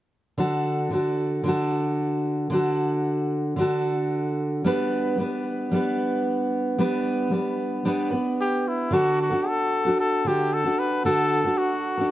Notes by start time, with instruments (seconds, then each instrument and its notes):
0.38 steel-string acoustic guitar D3 D4 F#4 A4
0.91 steel-string acoustic guitar D3 D4 F#4 A4
1.44 steel-string acoustic guitar D3 D4 F#4
1.49 steel-string acoustic guitar A4
2.50 steel-string acoustic guitar D3 D4 F#4
2.55 steel-string acoustic guitar A4
3.56 steel-string acoustic guitar D3 D4 F#4
3.61 steel-string acoustic guitar A4
4.64 steel-string acoustic guitar G3 B3 D4 B4
5.18 steel-string acoustic guitar G3 B3 D4 B4
5.71 steel-string acoustic guitar G3 B3 D4
5.76 steel-string acoustic guitar B4
6.78 steel-string acoustic guitar G3 B3 D4 B4
7.31 steel-string acoustic guitar G3 B3 D4 B4
7.85 steel-string acoustic guitar G3 B3 D4 B4
8.11 steel-string acoustic guitar B3 D4 B4
8.41 trumpet G4
8.68 trumpet E4
8.91 steel-string acoustic guitar D3 D4 F#4 A4, trumpet F#4
9.22 trumpet F#4
9.30 steel-string acoustic guitar D4 F#4 A4
9.48 trumpet A4
9.85 steel-string acoustic guitar D4 F#4 A4
10.00 trumpet A4
10.25 steel-string acoustic guitar D3 D4 F#4 A4, trumpet G4
10.53 trumpet A4
10.64 steel-string acoustic guitar D4 F#4 A4
10.79 trumpet B4
11.05 steel-string acoustic guitar D3 D4 F#4 A4, trumpet A4
11.44 steel-string acoustic guitar D4 F#4 A4
11.58 trumpet F#4
11.97 steel-string acoustic guitar D4 F#4 A4